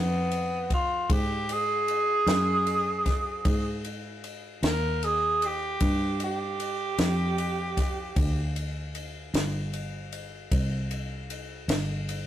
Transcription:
0.00 1.06 F2 medium
0.00 0.70 B3 loud
0.31 ride medium
0.70 1.15 F4 medium
0.70 kick medium
0.70 ride medium
1.10 2.24 G#2 medium
1.10 1.53 G4 medium
1.10 kick loud
1.10 ride medium
1.49 3.82 G#4 loud
1.49 ride medium
1.88 ride medium
2.26 3.41 F#2 medium
2.26 snare loud
2.26 ride medium
2.67 ride medium
3.06 kick medium
3.06 snare soft
3.06 ride medium
3.45 4.59 G#2 medium
3.45 kick loud
3.45 ride medium
3.85 ride medium
4.24 ride medium
4.63 5.77 D#2 medium
4.63 5.06 A#4 loud
4.63 snare loud
4.63 ride medium
5.03 5.47 G#4 medium
5.03 ride medium
5.42 6.20 G4 loud
5.42 ride medium
5.80 6.95 G2 medium
5.80 kick loud
5.80 ride medium
6.20 8.53 G4 medium
6.20 ride medium
6.60 ride medium
6.98 8.13 F2 medium
6.98 snare loud
6.98 ride medium
7.38 ride medium
7.77 kick medium
7.77 snare soft
7.77 ride medium
8.16 9.30 D2 medium
8.16 kick loud
8.16 ride medium
8.56 ride medium
8.95 ride medium
9.34 10.48 G1 medium
9.34 snare loud
9.34 ride medium
9.73 ride medium
10.12 ride medium
10.52 11.66 C2 medium
10.52 kick loud
10.52 ride medium
10.91 ride medium
11.30 ride medium
11.68 12.27 G1 medium
11.68 snare loud
11.68 ride medium
12.09 ride medium

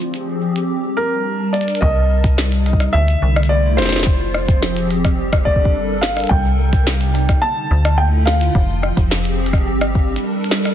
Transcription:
0.00 0.70 F3 medium
0.00 1.15 C4 medium
0.00 0.70 D4 medium
0.00 1.15 G4 medium
0.00 0.70 D5 medium
0.00 closed hi-hat medium
0.08 0.70 G#4 medium
0.14 closed hi-hat medium
0.56 closed hi-hat soft
0.70 2.94 G3 medium
0.97 1.55 A#4 loud
1.14 1.82 D4 medium
1.14 2.27 A5 medium
1.20 2.27 A#4 medium
1.53 1.79 D5 medium
1.53 closed hi-hat medium
1.61 closed hi-hat medium
1.68 closed hi-hat medium
1.75 closed hi-hat medium
1.81 2.89 C2 loud
1.81 2.94 C3 medium
1.81 2.97 D#5 loud
1.81 kick loud
2.24 kick loud
2.24 closed hi-hat medium
2.32 2.94 D#4 medium
2.38 snare loud
2.52 closed hi-hat medium
2.66 open hi-hat medium
2.73 kick medium
2.80 cross-stick medium
2.80 closed hi-hat medium
2.93 3.15 D2 medium
2.93 4.06 D3 medium
2.93 3.46 E5 loud
3.06 4.06 A3 medium
3.06 closed hi-hat medium
3.13 4.06 E4 medium
3.22 3.80 C2 loud
3.36 cross-stick medium
3.43 4.51 F4 medium
3.43 closed hi-hat medium
3.49 3.79 D5 loud
3.77 5.48 F1 medium
3.77 4.86 C5 medium
3.77 snare medium
3.82 snare medium
3.85 snare medium
3.89 snare medium
3.92 snare medium
3.92 closed hi-hat medium
3.96 snare medium
3.99 snare loud
4.03 5.18 F3 medium
4.03 kick loud
4.03 snare loud
4.25 5.63 C4 medium
4.34 cross-stick medium
4.48 kick loud
4.48 closed hi-hat medium
4.57 5.63 G4 medium
4.57 5.18 G#4 medium
4.62 snare loud
4.77 closed hi-hat medium
4.91 open hi-hat medium
5.05 kick medium
5.05 cross-stick medium
5.05 closed hi-hat medium
5.18 7.43 G3 medium
5.31 6.75 A4 medium
5.31 kick medium
5.31 cross-stick medium
5.31 closed hi-hat medium
5.37 6.31 D4 medium
5.45 6.25 G1 medium
5.45 5.98 D5 medium
5.45 kick soft
5.56 kick medium
5.65 6.76 A#4 medium
5.65 kick medium
6.01 6.31 F5 medium
6.01 snare loud
6.17 cross-stick medium
6.17 closed hi-hat medium
6.20 closed hi-hat medium
6.24 closed hi-hat soft
6.27 7.37 C2 medium
6.27 7.43 C3 medium
6.27 7.46 G5 loud
6.27 kick loud
6.27 closed hi-hat soft
6.73 kick loud
6.73 closed hi-hat medium
6.81 7.43 D#4 medium
6.87 snare loud
7.01 closed hi-hat medium
7.15 open hi-hat medium
7.29 kick medium
7.29 cross-stick medium
7.29 closed hi-hat medium
7.42 8.55 D3 medium
7.42 8.00 A5 loud
7.71 8.50 D2 medium
7.78 8.55 A3 medium
7.85 cross-stick medium
7.85 closed hi-hat medium
7.93 8.55 E4 medium
7.93 9.00 F4 medium
7.98 8.04 G5 loud
8.26 9.34 F5 medium
8.26 snare loud
8.41 closed hi-hat medium
8.55 8.92 F1 loud
8.55 9.67 F3 medium
8.55 kick loud
8.83 10.12 C4 medium
8.83 cross-stick medium
8.97 9.69 F1 medium
8.97 kick loud
8.97 closed hi-hat medium
9.05 10.12 G4 medium
9.05 9.67 G#4 medium
9.11 snare loud
9.25 closed hi-hat medium
9.46 open hi-hat medium
9.53 kick medium
9.53 cross-stick soft
9.67 10.18 G1 medium
9.67 10.74 G3 medium
9.81 cross-stick medium
9.81 closed hi-hat medium
9.95 kick medium
10.00 10.74 D4 medium
10.16 10.74 A4 medium
10.16 10.74 A#4 medium
10.16 closed hi-hat medium
10.44 closed hi-hat soft
10.51 snare loud
10.65 cross-stick medium
10.65 closed hi-hat medium

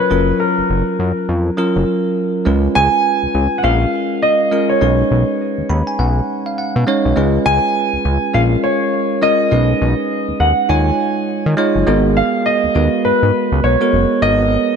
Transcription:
0.00 0.10 F#3 medium
0.00 0.10 C#4 medium
0.00 0.11 F4 medium
0.00 0.11 A#4 medium
0.00 0.41 B4 medium
0.10 0.33 F#1 medium
0.10 1.00 F#3 medium
0.10 1.00 C#4 medium
0.10 1.01 F4 medium
0.10 1.01 A#4 medium
0.40 1.24 A#4 medium
0.58 0.63 F#1 soft
0.70 0.83 F#1 medium
0.99 1.12 F#2 medium
1.29 1.51 F2 medium
1.57 2.26 F#3 medium
1.57 2.26 C#4 medium
1.57 2.27 F4 medium
1.57 2.27 A#4 loud
1.76 1.85 F#1 medium
2.45 2.68 C#2 loud
2.45 3.35 G#3 medium
2.45 3.36 C#4 medium
2.45 3.36 F4 medium
2.45 3.36 B4 medium
2.75 2.89 C#2 loud
2.75 3.61 G#5 loud
3.23 3.28 C#2 soft
3.35 3.48 C#2 medium
3.58 3.64 F#5 medium
3.63 3.86 A#1 loud
3.63 4.36 G#3 medium
3.63 4.37 C#4 medium
3.63 4.37 F4 medium
3.63 4.37 A#4 medium
3.63 4.24 F5 medium
4.22 4.71 D#5 medium
4.51 4.75 G#3 medium
4.51 4.76 C#4 medium
4.51 4.76 F4 medium
4.51 4.76 A#4 medium
4.69 6.42 C#5 medium
4.81 5.03 B1 medium
4.81 5.71 G#3 medium
4.81 5.71 C#4 medium
4.81 5.71 D#4 medium
4.81 5.71 B4 medium
5.11 5.24 B1 loud
5.58 5.63 D#2 medium
5.69 5.83 D#2 medium
5.69 5.86 B5 medium
5.87 5.98 G#5 medium
5.99 6.21 B1 loud
5.99 6.43 F#5 medium
6.46 6.57 F5 medium
6.58 7.13 F#5 medium
6.76 6.84 B2 loud
6.87 7.11 G#3 loud
6.87 7.11 C#4 medium
6.87 7.11 D#4 medium
6.87 7.11 C#5 loud
7.05 7.14 B1 medium
7.16 7.39 C#2 loud
7.16 8.06 G#3 medium
7.16 8.06 C#4 medium
7.16 8.06 F4 medium
7.16 8.07 B4 medium
7.46 7.59 C#2 loud
7.46 8.37 G#5 loud
7.93 7.98 C#2 medium
8.05 8.18 C#2 medium
8.34 8.56 A#1 medium
8.34 9.07 G#3 medium
8.34 9.07 C#4 medium
8.34 9.07 F4 medium
8.34 9.08 A#4 medium
8.34 8.41 F5 medium
8.64 9.24 C#5 medium
9.22 9.46 G#3 medium
9.22 9.46 C#4 medium
9.22 9.46 F4 medium
9.22 9.47 A#4 medium
9.22 10.44 D#5 loud
9.51 9.74 B1 loud
9.51 10.41 G#3 medium
9.51 10.41 C#4 medium
9.51 10.42 D#4 medium
9.51 10.42 B4 medium
9.81 9.95 B1 loud
10.29 10.33 D#2 medium
10.40 10.53 D#2 medium
10.40 10.67 F#5 medium
10.69 10.91 D#2 loud
10.69 11.42 G#3 medium
10.69 11.42 D#4 medium
10.69 11.43 F4 medium
10.69 11.43 C#5 medium
10.69 11.54 G#5 medium
11.46 11.55 D#3 loud
11.57 11.81 G#3 loud
11.57 11.81 D#4 medium
11.57 11.82 F4 medium
11.57 11.82 C#5 loud
11.76 11.84 F#1 medium
11.87 12.22 G#1 loud
11.87 12.56 G#3 medium
11.87 12.56 B3 medium
11.87 12.56 F#4 medium
11.87 12.56 A#4 loud
12.17 12.47 F5 medium
12.46 13.01 D#5 medium
12.64 12.69 D#2 medium
12.75 12.89 D#2 medium
12.75 13.55 G#3 medium
12.75 13.56 B3 medium
12.75 13.56 F#4 medium
12.75 13.56 B4 medium
13.05 13.12 G#2 soft
13.05 13.65 B4 medium
13.23 13.31 G#2 loud
13.52 13.61 C#2 loud
13.64 13.77 B1 medium
13.64 14.24 C#5 medium
13.81 14.14 G#3 medium
13.81 14.14 B3 medium
13.81 14.14 F#4 medium
13.81 14.14 A#4 medium
13.93 14.06 F#1 medium
14.22 14.57 G#1 loud
14.22 14.76 G#3 medium
14.22 14.76 B3 medium
14.22 14.76 F#4 medium
14.22 14.76 A#4 medium
14.22 14.76 D#5 loud

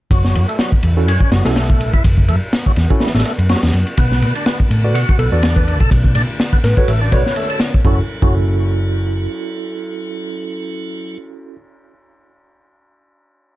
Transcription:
0.11 0.36 F#1 loud
0.11 0.47 F#3 medium
0.11 kick loud
0.11 ride medium
0.25 snare soft
0.35 0.44 F#2 medium
0.35 ride medium
0.48 0.58 A3 medium
0.48 ride soft
0.59 0.71 F#3 medium
0.59 snare loud
0.59 ride loud
0.72 kick loud
0.83 1.08 E2 medium
0.83 ride medium
0.97 1.10 C#4 medium
0.97 1.10 E4 medium
0.97 1.10 F#4 medium
0.97 1.10 A4 medium
1.08 1.16 F#2 medium
1.08 1.31 C#4 medium
1.08 ride medium
1.21 kick medium
1.32 1.41 F#1 medium
1.32 1.44 F#3 medium
1.32 snare loud
1.32 ride medium
1.45 1.94 B1 medium
1.45 1.92 A3 medium
1.45 1.54 C#4 medium
1.45 1.53 E4 medium
1.45 1.53 F#4 medium
1.45 1.54 A4 medium
1.45 snare medium
1.45 ride medium
1.56 snare loud
1.56 ride medium
1.70 kick medium
1.81 ride medium
1.93 2.01 F#1 medium
1.93 2.03 E4 loud
1.93 kick medium
2.04 2.30 F#1 loud
2.04 kick loud
2.04 ride loud
2.18 kick medium
2.28 2.37 F#2 medium
2.28 2.36 A3 loud
2.28 ride medium
2.53 snare loud
2.53 ride loud
2.66 2.72 F#3 medium
2.66 kick medium
2.76 2.86 E2 medium
2.76 snare soft
2.76 ride medium
2.90 3.04 C#4 medium
2.90 3.04 E4 medium
2.90 3.04 F#4 medium
2.90 3.04 A4 loud
2.90 kick loud
3.00 3.13 E3 loud
3.00 snare medium
3.00 ride medium
3.07 snare medium
3.07 ride medium
3.14 3.22 A1 medium
3.14 3.24 A3 medium
3.14 snare medium
3.14 ride medium
3.20 snare medium
3.20 ride medium
3.25 3.33 A3 loud
3.25 snare soft
3.25 ride medium
3.39 3.54 F#2 loud
3.39 ride soft
3.49 3.62 F#3 loud
3.49 snare medium
3.49 ride medium
3.56 snare medium
3.56 ride medium
3.63 3.70 E2 medium
3.63 snare loud
3.63 ride medium
3.68 snare medium
3.68 ride medium
3.73 3.83 F#2 loud
3.73 ride medium
3.87 ride soft
3.97 4.23 B1 loud
3.97 7.81 D3 medium
3.97 7.81 A3 medium
3.97 5.90 B3 medium
3.97 4.34 B3 medium
3.97 kick loud
3.97 ride medium
4.12 snare soft
4.22 4.31 B2 medium
4.22 ride medium
4.35 4.45 D4 medium
4.35 ride soft
4.46 4.58 B3 medium
4.46 snare loud
4.46 ride medium
4.60 kick medium
4.70 4.95 A2 medium
4.70 ride medium
4.84 4.98 F#4 medium
4.84 4.98 A4 medium
4.84 4.98 B4 medium
4.84 4.98 D5 medium
4.94 5.03 B2 medium
4.94 5.18 F#4 medium
4.94 ride medium
5.09 kick loud
5.19 5.28 B1 medium
5.19 5.31 B3 medium
5.19 5.27 A4 medium
5.19 ride medium
5.32 5.81 E2 medium
5.32 5.79 D4 medium
5.32 5.41 F#4 medium
5.32 5.41 A4 medium
5.32 5.40 A4 medium
5.32 5.40 B4 medium
5.32 5.40 D5 medium
5.43 snare loud
5.43 ride medium
5.56 5.63 B4 medium
5.56 kick loud
5.67 5.76 B4 medium
5.67 ride medium
5.80 5.88 B1 loud
5.80 5.90 A4 loud
5.80 kick loud
5.91 6.17 B1 loud
5.91 7.83 C#4 medium
5.91 kick loud
5.91 ride medium
6.04 kick medium
6.15 6.24 B2 medium
6.15 6.23 D4 loud
6.15 ride medium
6.40 snare loud
6.40 ride loud
6.53 6.59 B3 medium
6.53 kick loud
6.64 6.73 A2 medium
6.64 7.02 B4 loud
6.64 snare soft
6.64 ride medium
6.77 6.91 F#4 medium
6.77 6.91 A4 medium
6.77 6.91 B4 medium
6.77 6.91 C#5 loud
6.77 kick medium
6.88 7.12 A1 medium
6.88 7.00 A3 loud
6.88 ride medium
7.01 7.12 D4 medium
7.12 7.21 B1 loud
7.12 7.24 B3 medium
7.12 7.23 F#4 medium
7.12 7.23 A4 medium
7.12 7.23 B4 medium
7.12 7.81 C#5 loud
7.12 7.23 D5 medium
7.12 kick loud
7.12 ride medium
7.25 7.35 B3 loud
7.25 snare soft
7.36 7.49 A3 loud
7.36 ride medium
7.50 7.60 A4 loud
7.50 ride soft
7.60 snare loud
7.60 ride medium
7.74 kick loud
7.85 7.99 F#1 loud
7.85 7.99 F#3 medium
7.85 11.18 F#3 medium
7.85 11.18 C#4 medium
7.85 8.00 C#4 medium
7.85 11.18 E4 medium
7.85 8.00 E4 medium
7.85 8.00 F#4 medium
7.85 11.18 A4 medium
7.85 8.00 A4 loud
7.85 kick loud
8.22 9.26 F#1 medium
8.22 8.35 F#3 medium
8.22 11.55 C#4 medium
8.22 11.55 E4 medium
8.22 11.55 F#4 medium
8.22 11.55 A4 medium
8.22 kick loud

